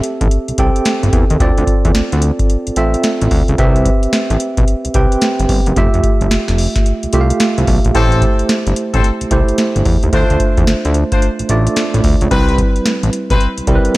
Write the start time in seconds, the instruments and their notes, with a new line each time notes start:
Already playing: tine electric piano C4 G4 A4 E5
0.04 closed hi-hat
0.21 analog synth bass A1, kick, closed hi-hat
0.31 closed hi-hat
0.48 analog synth bass C2, closed hi-hat
0.58 analog synth bass C2, tine electric piano C4 G4 A4 G5, kick, closed hi-hat
0.76 closed hi-hat
0.85 snare, closed hi-hat
1.03 analog synth bass G1, closed hi-hat
1.13 analog synth bass E2, kick, closed hi-hat
1.30 analog synth bass D#2, closed hi-hat
1.40 analog synth bass D2, tine electric piano C4 F4 A4 D5, kick, closed hi-hat
1.58 analog synth bass D2, closed hi-hat
1.67 kick, closed hi-hat
1.85 analog synth bass E2, kick, closed hi-hat
1.95 analog synth bass D2, snare, closed hi-hat
2.12 analog synth bass D2, closed hi-hat
2.22 closed hi-hat
2.39 kick, closed hi-hat
2.50 closed hi-hat
2.67 analog synth bass A1, closed hi-hat
2.76 analog synth bass A1, tine electric piano C4 F4 A4 E5, closed hi-hat
2.94 closed hi-hat
3.04 snare, closed hi-hat
3.21 analog synth bass A1, closed hi-hat
3.31 analog synth bass D2, kick, open hi-hat
3.48 analog synth bass C#2, closed hi-hat
3.58 analog synth bass C2, tine electric piano C4 G4 B4 E5, kick, closed hi-hat
3.76 closed hi-hat
3.85 kick, closed hi-hat
4.03 closed hi-hat
4.13 snare, closed hi-hat
4.30 analog synth bass A1, closed hi-hat
4.40 closed hi-hat
4.57 analog synth bass B1, kick, closed hi-hat
4.68 closed hi-hat
4.85 analog synth bass C2, closed hi-hat
4.94 analog synth bass C2, tine electric piano C4 G4 B4 G5, kick, closed hi-hat
5.12 closed hi-hat
5.21 snare, closed hi-hat
5.39 analog synth bass G1, closed hi-hat
5.49 analog synth bass G1, kick, open hi-hat
5.66 analog synth bass F#1, closed hi-hat
5.76 analog synth bass F1, tine electric piano A3 F4 G4 E5, kick, closed hi-hat
5.94 analog synth bass F1, closed hi-hat
6.03 kick, closed hi-hat
6.21 analog synth bass G1, kick, closed hi-hat
6.31 analog synth bass F1, snare, closed hi-hat
6.48 analog synth bass F1, snare, closed hi-hat
6.58 open hi-hat
6.76 kick, snare, closed hi-hat
6.86 closed hi-hat
7.03 analog synth bass C2, closed hi-hat
7.13 analog synth bass C2, tine electric piano A3 F4 G4 E5, closed hi-hat
7.21 tine electric piano F5
7.30 closed hi-hat
7.40 snare, closed hi-hat
7.58 analog synth bass C2, closed hi-hat
7.67 analog synth bass B1, kick, open hi-hat
7.85 analog synth bass A#1, closed hi-hat
7.94 analog synth bass A1, tine electric piano A3 E4 G4 C5, horn section C4 G4 A4, kick, closed hi-hat
8.12 closed hi-hat
8.22 kick, closed hi-hat
8.39 closed hi-hat
8.49 snare, closed hi-hat
8.67 analog synth bass G1, closed hi-hat
8.76 closed hi-hat
8.93 analog synth bass A1, horn section C4 G4 A4, kick, closed hi-hat
9.04 closed hi-hat
9.21 analog synth bass C2, closed hi-hat
9.31 analog synth bass C2, tine electric piano A3 E4 G4 C5, kick, closed hi-hat
9.48 closed hi-hat
9.58 snare, closed hi-hat
9.76 analog synth bass G1, closed hi-hat
9.85 analog synth bass E2, kick, open hi-hat
10.03 analog synth bass D#2, closed hi-hat
10.13 analog synth bass D2, tine electric piano A3 D4 E4 C5, horn section D4 F4 C5, kick, closed hi-hat
10.21 tine electric piano F4
10.30 analog synth bass D2, closed hi-hat
10.40 kick, closed hi-hat
10.57 analog synth bass E2, kick, closed hi-hat
10.67 analog synth bass D2, snare, closed hi-hat
10.85 analog synth bass D2, closed hi-hat
10.94 closed hi-hat
11.12 horn section D4 F4 C5, kick, closed hi-hat
11.22 closed hi-hat
11.39 analog synth bass A1, closed hi-hat
11.49 analog synth bass A1, tine electric piano A3 D4 F4 D5, closed hi-hat
11.67 closed hi-hat
11.76 snare, closed hi-hat
11.94 analog synth bass A1, closed hi-hat
12.04 analog synth bass D2, kick, open hi-hat
12.21 analog synth bass C#2, closed hi-hat
12.31 analog synth bass C2, tine electric piano G3 C4 E4 B4, horn section C4 E4 B4, kick, closed hi-hat
12.49 closed hi-hat
12.58 kick, closed hi-hat
12.76 closed hi-hat
12.86 snare, closed hi-hat
13.03 analog synth bass A1, closed hi-hat
13.13 closed hi-hat
13.30 analog synth bass B1, horn section C4 E4 B4, kick, closed hi-hat
13.41 closed hi-hat
13.58 analog synth bass C2, closed hi-hat
13.67 analog synth bass C2, tine electric piano G3 C4 E4 A#4, kick, closed hi-hat
13.75 tine electric piano B4
13.85 closed hi-hat